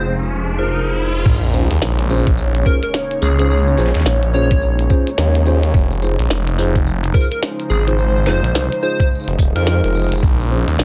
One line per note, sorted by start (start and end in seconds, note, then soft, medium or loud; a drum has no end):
0.00 1.24 F1 medium
0.00 1.22 C3 medium
0.00 1.22 F3 medium
0.00 1.22 G#3 medium
0.00 5.72 D#4 medium
0.00 1.24 F4 medium
0.00 10.23 G#4 loud
0.00 0.11 C5 medium
0.00 1.26 C5 medium
0.00 riser medium
0.59 1.25 D#4 medium
0.59 1.25 F4 medium
0.59 1.25 G#4 medium
0.59 1.15 A#4 medium
0.59 1.25 C5 medium
1.26 1.68 A#1 loud
1.26 10.84 C#3 medium
1.26 10.84 G#3 medium
1.26 5.71 A#3 medium
1.26 5.71 C#4 medium
1.26 kick loud
1.26 crash loud
1.26 tambourine soft
1.26 sub drop medium
1.43 tambourine soft
1.53 1.66 C#4 medium
1.53 1.66 F4 medium
1.53 1.66 G#4 medium
1.53 1.66 C5 medium
1.53 tambourine medium
1.59 5.74 C#5 medium
1.71 1.80 D#2 loud
1.71 closed hi-hat medium
1.71 tambourine soft
1.82 2.64 A#1 loud
1.82 snare loud
1.82 tambourine soft
1.99 closed hi-hat medium
1.99 tambourine soft
2.10 2.28 C#4 medium
2.10 2.28 F4 medium
2.10 2.28 G#4 medium
2.10 2.28 C5 loud
2.10 tambourine medium
2.14 tambourine medium
2.19 tambourine soft
2.23 kick loud
2.23 tambourine soft
2.27 closed hi-hat medium
2.38 tambourine soft
2.55 closed hi-hat medium
2.66 2.78 C#4 medium
2.66 2.78 F4 medium
2.66 2.78 G#4 medium
2.66 2.77 A#4 medium
2.66 2.78 C5 medium
2.66 kick loud
2.66 tambourine medium
2.83 2.90 A#4 medium
2.83 closed hi-hat medium
2.83 tambourine soft
2.94 snare loud
2.94 tambourine soft
3.11 closed hi-hat soft
3.11 tambourine soft
3.22 3.76 C#2 loud
3.22 3.36 G#4 medium
3.22 tambourine medium
3.38 3.47 C#4 medium
3.38 3.47 F4 medium
3.38 3.46 G#4 medium
3.38 3.47 G#4 medium
3.38 3.47 C5 medium
3.38 closed hi-hat medium
3.38 tambourine soft
3.49 3.61 G#4 medium
3.49 tambourine soft
3.67 tambourine soft
3.78 3.93 A#1 medium
3.78 3.90 C#4 loud
3.78 3.90 F4 medium
3.78 3.90 G#4 medium
3.78 3.90 C5 loud
3.78 snare soft
3.78 tambourine medium
3.87 snare soft
3.95 4.04 D#2 loud
3.95 snare soft
3.95 closed hi-hat medium
3.95 tambourine soft
4.00 snare soft
4.06 4.88 A#1 medium
4.06 snare loud
4.06 tambourine soft
4.23 closed hi-hat medium
4.23 tambourine soft
4.34 4.53 C#4 medium
4.34 4.53 F4 medium
4.34 4.53 G#4 medium
4.34 4.53 C5 medium
4.34 4.79 C#5 loud
4.34 tambourine medium
4.51 kick loud
4.51 closed hi-hat medium
4.51 tambourine soft
4.62 tambourine soft
4.79 closed hi-hat medium
4.79 tambourine soft
4.90 5.09 C#4 loud
4.90 5.09 F4 medium
4.90 5.09 G#4 medium
4.90 5.09 C5 loud
4.90 kick loud
4.90 tambourine medium
5.07 closed hi-hat medium
5.07 tambourine soft
5.18 5.72 D#2 loud
5.18 snare loud
5.18 tambourine soft
5.35 closed hi-hat soft
5.35 tambourine soft
5.46 5.58 C#4 medium
5.46 5.58 F4 medium
5.46 5.58 G#4 medium
5.46 5.58 C5 loud
5.46 tambourine medium
5.63 closed hi-hat medium
5.63 tambourine soft
5.74 6.17 F1 loud
5.74 10.19 F3 medium
5.74 10.84 D#4 loud
5.74 10.19 D#4 medium
5.74 kick loud
5.74 tambourine soft
5.91 tambourine soft
6.02 6.15 D#4 medium
6.02 6.15 F4 medium
6.02 6.14 G#4 medium
6.02 6.15 C5 medium
6.02 tambourine medium
6.19 6.28 A#1 loud
6.19 closed hi-hat medium
6.19 tambourine soft
6.30 7.12 F1 loud
6.30 snare loud
6.30 tambourine soft
6.47 closed hi-hat medium
6.47 tambourine soft
6.58 6.77 D#4 medium
6.58 6.77 F4 medium
6.58 6.77 G#4 medium
6.58 6.77 C5 loud
6.58 tambourine medium
6.75 kick loud
6.75 closed hi-hat medium
6.75 tambourine soft
6.87 tambourine soft
7.04 closed hi-hat medium
7.04 tambourine soft
7.14 7.27 D#4 medium
7.14 7.27 F4 medium
7.14 7.26 G#4 medium
7.14 7.25 A#4 medium
7.14 7.27 C5 medium
7.14 kick loud
7.14 tambourine medium
7.20 10.23 C5 loud
7.20 tambourine medium
7.24 tambourine soft
7.31 7.38 A#4 medium
7.31 closed hi-hat medium
7.31 tambourine soft
7.43 snare loud
7.43 tambourine soft
7.60 closed hi-hat soft
7.60 tambourine soft
7.70 8.25 G#1 loud
7.70 7.84 G#4 medium
7.70 tambourine medium
7.88 7.95 D#4 medium
7.88 7.95 F4 medium
7.88 7.95 G#4 medium
7.88 7.95 C5 medium
7.88 closed hi-hat medium
7.88 tambourine soft
7.99 tambourine soft
8.16 tambourine soft
8.23 8.41 F1 medium
8.23 8.52 C5 medium
8.23 snare soft
8.23 tambourine soft
8.27 8.39 D#4 medium
8.27 8.39 F4 medium
8.27 8.39 G#4 medium
8.27 8.39 C5 loud
8.27 tambourine medium
8.37 tambourine soft
8.43 8.53 A#1 loud
8.43 closed hi-hat medium
8.43 tambourine soft
8.54 8.69 C2 loud
8.54 snare loud
8.54 tambourine soft
8.72 closed hi-hat medium
8.72 tambourine soft
8.83 9.01 D#4 medium
8.83 9.01 F4 medium
8.83 9.01 G#4 medium
8.83 9.08 C5 loud
8.83 9.01 C5 medium
8.83 tambourine medium
9.00 kick loud
9.00 closed hi-hat medium
9.00 tambourine soft
9.11 tambourine soft
9.15 tambourine soft
9.20 tambourine soft
9.24 9.37 F1 loud
9.24 tambourine soft
9.28 closed hi-hat medium
9.39 9.53 D#1 loud
9.39 kick loud
9.39 tambourine medium
9.55 9.81 F2 loud
9.55 10.22 D#4 medium
9.55 10.22 F4 medium
9.55 10.22 G#4 medium
9.55 10.12 A#4 loud
9.55 10.22 C5 medium
9.55 closed hi-hat medium
9.55 tambourine soft
9.67 snare loud
9.67 tambourine soft
9.84 10.09 F1 loud
9.84 closed hi-hat soft
9.84 tambourine soft
9.86 tambourine soft
9.91 tambourine soft
9.95 tambourine soft
9.99 tambourine soft
10.01 tambourine soft
10.03 tambourine soft
10.08 10.21 F1 loud
10.08 tambourine soft
10.12 closed hi-hat medium
10.12 tambourine medium
10.15 tambourine medium
10.17 tambourine medium
10.20 10.65 A#1 loud
10.20 kick loud
10.20 tambourine medium
10.23 10.84 A#3 medium
10.23 10.84 C#4 medium
10.23 tambourine soft
10.40 tambourine soft
10.51 10.63 C#4 medium
10.51 10.63 F4 medium
10.51 10.63 G#4 medium
10.51 10.63 C5 medium
10.67 10.77 D#2 loud
10.67 closed hi-hat medium
10.67 tambourine soft
10.76 10.84 A#1 loud
10.76 10.84 G#4 loud
10.76 10.84 C#5 medium
10.76 snare loud
10.76 tambourine soft